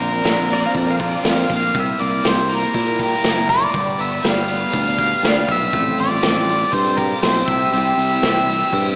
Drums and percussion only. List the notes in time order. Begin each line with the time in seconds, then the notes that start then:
0.25 snare, open hi-hat
0.75 kick, open hi-hat
1.00 kick
1.24 snare, open hi-hat
1.50 kick
1.75 kick, open hi-hat
2.25 snare, open hi-hat
2.74 kick, open hi-hat
2.99 kick
3.24 snare, open hi-hat
3.49 kick
3.74 kick, open hi-hat
4.24 snare, open hi-hat
4.74 kick, open hi-hat
4.99 kick
5.24 snare, open hi-hat
5.49 kick
5.73 kick, open hi-hat
6.22 snare, open hi-hat
6.73 kick, open hi-hat
6.98 kick
7.22 snare, open hi-hat
7.48 kick
7.73 open hi-hat
8.23 snare, open hi-hat
8.73 kick, open hi-hat